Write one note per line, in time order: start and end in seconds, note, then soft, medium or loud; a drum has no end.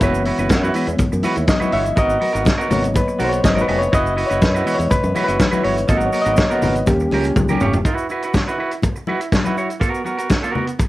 0.00 0.30 F#1 medium
0.00 0.34 E3 medium
0.00 0.35 G#3 soft
0.00 0.35 B3 medium
0.00 0.21 E4 medium
0.00 0.22 F#4 medium
0.00 0.22 B4 medium
0.00 0.72 C#5 medium
0.00 kick loud
0.00 closed hi-hat medium
0.00 shaker medium
0.14 shaker medium
0.25 0.39 E4 medium
0.25 0.39 F#4 medium
0.25 0.38 B4 medium
0.25 open hi-hat medium
0.37 0.52 F#1 medium
0.37 0.49 E4 soft
0.37 0.50 F#4 medium
0.37 0.50 B4 medium
0.37 closed hi-hat soft
0.37 shaker medium
0.49 0.69 F#2 medium
0.49 muted clean electric guitar stroke soft
0.49 kick loud
0.49 snare loud
0.49 closed hi-hat medium
0.49 high conga medium
0.49 shaker medium
0.63 0.73 E4 medium
0.63 0.74 F#4 medium
0.63 0.75 B4 medium
0.63 shaker soft
0.74 0.97 E3 soft
0.74 0.97 G#3 soft
0.74 0.97 B3 medium
0.74 0.91 E4 medium
0.74 0.87 F#4 medium
0.74 0.86 B4 medium
0.74 open hi-hat medium
0.74 shaker medium
0.87 0.97 E2 medium
0.87 muted clean electric guitar stroke medium
0.87 closed hi-hat soft
0.87 shaker soft
0.98 muted clean electric guitar stroke soft
0.98 kick loud
0.98 closed hi-hat medium
0.98 muted conga soft
0.98 low conga medium
0.98 shaker medium
1.12 1.22 F#2 loud
1.12 muted clean electric guitar stroke soft
1.12 shaker medium
1.23 1.43 E4 medium
1.23 1.37 F#4 medium
1.23 1.35 B4 medium
1.23 open hi-hat medium
1.23 muted conga medium
1.23 shaker medium
1.36 1.46 D#2 medium
1.36 muted clean electric guitar stroke soft
1.36 closed hi-hat medium
1.36 shaker soft
1.47 1.74 D#5 loud
1.47 muted clean electric guitar stroke soft
1.47 kick loud
1.47 snare loud
1.47 closed hi-hat medium
1.47 high conga medium
1.47 shaker medium
1.60 1.71 E4 medium
1.60 1.72 F#4 medium
1.60 1.73 B4 medium
1.60 high conga medium
1.60 shaker medium
1.72 1.92 G1 medium
1.72 1.88 E4 medium
1.72 1.85 F#4 medium
1.72 1.84 C#5 medium
1.72 1.98 E5 loud
1.72 open hi-hat medium
1.84 muted clean electric guitar stroke soft
1.84 closed hi-hat soft
1.84 shaker medium
1.96 2.16 G#1 medium
1.96 2.16 B3 medium
1.96 2.17 F#4 medium
1.96 2.17 A#4 medium
1.96 2.74 D#5 loud
1.96 kick loud
1.96 closed hi-hat medium
1.96 shaker medium
2.10 shaker medium
2.20 2.34 B3 medium
2.20 2.33 F#4 medium
2.20 2.32 A#4 medium
2.20 open hi-hat medium
2.20 muted conga soft
2.33 2.44 G#1 medium
2.33 2.44 B3 medium
2.33 2.45 F#4 medium
2.33 2.45 A#4 medium
2.33 closed hi-hat soft
2.33 shaker medium
2.45 kick loud
2.45 snare loud
2.45 closed hi-hat medium
2.45 high conga medium
2.45 shaker medium
2.58 2.68 B3 medium
2.58 2.69 F#4 medium
2.58 2.70 A#4 medium
2.58 shaker medium
2.69 3.00 G#1 loud
2.69 3.41 F#3 medium
2.69 3.41 A#3 medium
2.69 2.86 B3 medium
2.69 3.41 B3 medium
2.69 2.83 F#4 medium
2.69 2.82 A#4 medium
2.69 2.97 C#5 medium
2.69 open hi-hat medium
2.69 low conga loud
2.69 shaker medium
2.83 muted clean electric guitar stroke medium
2.83 closed hi-hat soft
2.83 shaker medium
2.94 3.25 B4 loud
2.94 muted clean electric guitar stroke soft
2.94 kick loud
2.94 closed hi-hat medium
2.94 muted conga soft
2.94 shaker medium
3.08 muted clean electric guitar stroke medium
3.08 shaker soft
3.19 3.39 B1 medium
3.19 3.39 B3 medium
3.19 3.32 F#4 medium
3.19 3.31 A#4 medium
3.19 open hi-hat medium
3.19 muted conga medium
3.19 shaker medium
3.24 3.28 C5 medium
3.29 3.45 C#5 medium
3.29 muted clean electric guitar stroke soft
3.29 closed hi-hat medium
3.29 shaker medium
3.44 3.63 G#1 loud
3.44 3.61 D#5 loud
3.44 muted clean electric guitar stroke soft
3.44 kick loud
3.44 snare loud
3.44 closed hi-hat medium
3.44 high conga medium
3.44 shaker medium
3.55 3.66 B3 medium
3.55 3.67 F#4 medium
3.55 3.68 A#4 medium
3.55 high conga medium
3.55 shaker medium
3.61 3.78 B4 medium
3.67 3.87 F1 medium
3.67 3.84 B3 medium
3.67 3.81 F#4 medium
3.67 3.81 B4 medium
3.67 open hi-hat medium
3.79 3.93 C#5 medium
3.79 muted clean electric guitar stroke soft
3.79 closed hi-hat soft
3.83 shaker medium
3.92 4.22 F#1 medium
3.92 4.13 E4 medium
3.92 4.13 F#4 medium
3.92 4.13 B4 medium
3.92 4.28 D#5 loud
3.92 kick loud
3.92 closed hi-hat medium
3.92 shaker medium
4.06 shaker medium
4.16 4.30 E4 medium
4.16 4.30 F#4 medium
4.16 4.29 B4 medium
4.16 open hi-hat medium
4.26 4.42 B4 medium
4.26 4.43 C#5 medium
4.26 closed hi-hat soft
4.31 4.40 F#1 medium
4.31 4.41 E4 medium
4.31 4.42 F#4 medium
4.31 shaker medium
4.42 4.61 F#2 loud
4.42 4.73 B4 medium
4.42 kick loud
4.42 snare loud
4.42 closed hi-hat medium
4.42 high conga medium
4.42 shaker medium
4.55 4.65 E4 medium
4.55 4.66 F#4 medium
4.55 4.66 B4 medium
4.55 shaker medium
4.65 4.99 E3 soft
4.65 4.99 G#3 medium
4.65 5.00 B3 medium
4.65 4.82 E4 medium
4.65 4.78 F#4 medium
4.65 4.77 B4 medium
4.65 open hi-hat medium
4.65 shaker medium
4.75 4.90 C#5 medium
4.75 muted clean electric guitar stroke soft
4.79 4.88 E2 loud
4.79 closed hi-hat medium
4.79 shaker medium
4.90 5.21 B4 loud
4.90 muted clean electric guitar stroke medium
4.90 kick loud
4.90 closed hi-hat medium
4.90 muted conga soft
4.90 low conga medium
4.90 shaker medium
5.04 5.13 F#2 loud
5.04 muted clean electric guitar stroke medium
5.04 shaker medium
5.15 5.28 E4 medium
5.15 5.27 F#4 medium
5.15 5.26 B4 loud
5.15 open hi-hat medium
5.15 muted conga medium
5.15 shaker medium
5.24 5.38 F#4 medium
5.24 5.47 B4 medium
5.24 5.39 B4 medium
5.24 closed hi-hat medium
5.28 5.37 F#1 medium
5.28 5.38 E4 medium
5.28 shaker soft
5.39 kick loud
5.39 snare loud
5.39 closed hi-hat medium
5.39 high conga medium
5.39 shaker medium
5.51 5.62 E4 medium
5.51 5.62 F#4 medium
5.51 5.64 B4 medium
5.51 high conga medium
5.51 shaker medium
5.63 5.84 G1 medium
5.63 5.79 E4 medium
5.63 5.77 F#4 medium
5.63 5.76 C#5 medium
5.63 5.87 C#5 medium
5.63 open hi-hat medium
5.77 muted clean electric guitar stroke soft
5.77 closed hi-hat soft
5.77 shaker medium
5.87 6.08 G#1 medium
5.87 6.58 F#3 medium
5.87 6.58 A#3 medium
5.87 6.09 B3 medium
5.87 6.59 B3 medium
5.87 6.09 F#4 medium
5.87 6.10 A#4 medium
5.87 6.06 D#5 medium
5.87 kick loud
5.87 closed hi-hat medium
5.87 shaker medium
6.01 shaker medium
6.06 6.21 C#5 medium
6.12 6.25 B3 medium
6.12 6.24 F#4 medium
6.12 6.24 A#4 medium
6.12 open hi-hat medium
6.12 shaker medium
6.22 6.37 A#4 medium
6.22 6.38 D#5 loud
6.26 6.35 G#1 loud
6.26 6.35 B3 medium
6.26 6.36 F#4 medium
6.26 closed hi-hat soft
6.26 shaker medium
6.36 6.61 C#5 medium
6.36 muted clean electric guitar stroke soft
6.36 kick loud
6.36 snare loud
6.36 closed hi-hat medium
6.36 high conga medium
6.36 shaker medium
6.50 6.60 B3 medium
6.50 6.61 F#4 medium
6.50 6.62 A#4 loud
6.50 shaker medium
6.62 6.81 G#1 medium
6.62 6.78 B3 medium
6.62 6.75 F#4 medium
6.62 6.74 A#4 medium
6.62 6.88 B4 medium
6.62 open hi-hat medium
6.62 low conga loud
6.62 shaker medium
6.75 muted clean electric guitar stroke soft
6.75 closed hi-hat soft
6.75 shaker medium
6.86 7.06 D#2 loud
6.86 7.20 G3 medium
6.86 7.20 A#3 medium
6.86 7.20 C#4 medium
6.86 7.33 G4 medium
6.86 muted clean electric guitar stroke soft
6.86 kick loud
6.86 closed hi-hat medium
6.86 muted conga soft
6.86 shaker medium
7.00 muted clean electric guitar stroke soft
7.00 shaker soft
7.11 7.30 C#2 medium
7.11 7.32 C#4 medium
7.11 7.26 G4 medium
7.11 7.24 A#4 medium
7.11 open hi-hat medium
7.11 muted conga medium
7.24 muted clean electric guitar stroke soft
7.24 closed hi-hat medium
7.24 shaker medium
7.36 7.55 C#2 loud
7.36 muted clean electric guitar stroke soft
7.36 kick loud
7.36 high tom medium
7.36 high conga medium
7.36 shaker medium
7.48 7.59 C#4 medium
7.48 7.60 G4 medium
7.48 7.62 A#4 medium
7.48 high conga medium
7.48 shaker medium
7.60 7.80 F1 loud
7.60 7.76 C#4 medium
7.60 7.74 G4 medium
7.60 7.74 C#5 medium
7.60 mid tom medium
7.60 shaker medium
7.73 muted clean electric guitar stroke soft
7.73 floor tom medium
7.73 shaker medium
7.85 8.06 E4 medium
7.85 8.06 F#4 medium
7.85 8.06 B4 medium
7.85 kick medium
7.85 closed hi-hat soft
7.85 shaker medium
7.98 shaker medium
8.09 8.24 E4 medium
8.09 8.23 F#4 medium
8.09 8.22 B4 medium
8.09 shaker soft
8.22 8.33 E4 soft
8.22 8.34 F#4 medium
8.22 8.35 B4 medium
8.22 closed hi-hat soft
8.22 shaker medium
8.34 muted clean electric guitar stroke soft
8.34 kick loud
8.34 snare medium
8.34 closed hi-hat medium
8.34 high conga medium
8.34 shaker medium
8.48 8.57 E4 medium
8.48 8.58 F#4 medium
8.48 8.59 B4 medium
8.48 shaker soft
8.58 8.74 E4 medium
8.58 8.72 F#4 medium
8.58 8.71 B4 medium
8.71 muted clean electric guitar stroke soft
8.71 closed hi-hat soft
8.71 shaker soft
8.82 muted clean electric guitar stroke soft
8.82 kick loud
8.82 closed hi-hat medium
8.82 muted conga soft
8.82 low conga medium
8.82 shaker medium
8.96 muted clean electric guitar stroke soft
8.96 shaker soft
9.07 9.27 E4 medium
9.07 9.20 F#4 medium
9.07 9.20 B4 medium
9.07 muted conga medium
9.21 muted clean electric guitar stroke soft
9.21 closed hi-hat medium
9.21 shaker soft
9.32 muted clean electric guitar stroke soft
9.32 kick loud
9.32 snare loud
9.32 closed hi-hat medium
9.32 high conga medium
9.32 shaker medium
9.44 9.55 E4 medium
9.44 9.57 F#4 medium
9.44 9.58 B4 medium
9.44 high conga medium
9.44 shaker medium
9.57 9.72 E4 medium
9.57 9.69 F#4 medium
9.57 9.69 C#5 medium
9.57 shaker soft
9.70 muted clean electric guitar stroke soft
9.70 closed hi-hat soft
9.70 shaker soft
9.80 10.01 B3 medium
9.80 10.01 F#4 medium
9.80 10.02 A#4 medium
9.80 kick medium
9.80 closed hi-hat medium
9.80 shaker medium
9.95 shaker soft
10.04 10.18 B3 medium
10.04 10.17 F#4 medium
10.04 10.16 A#4 medium
10.04 muted conga soft
10.04 shaker soft
10.17 10.28 B3 soft
10.17 10.29 F#4 medium
10.17 10.30 A#4 medium
10.17 closed hi-hat soft
10.17 shaker medium
10.29 kick loud
10.29 snare loud
10.29 closed hi-hat medium
10.29 high conga medium
10.29 shaker medium
10.43 10.53 B3 medium
10.43 10.54 F#4 medium
10.43 10.55 A#4 medium
10.43 shaker soft
10.54 10.70 B3 medium
10.54 10.67 F#4 medium
10.54 10.65 A#4 medium
10.54 low conga medium
10.67 muted clean electric guitar stroke soft
10.67 closed hi-hat soft
10.67 shaker soft
10.79 muted clean electric guitar stroke soft
10.79 kick loud
10.79 closed hi-hat medium
10.79 muted conga soft
10.79 shaker medium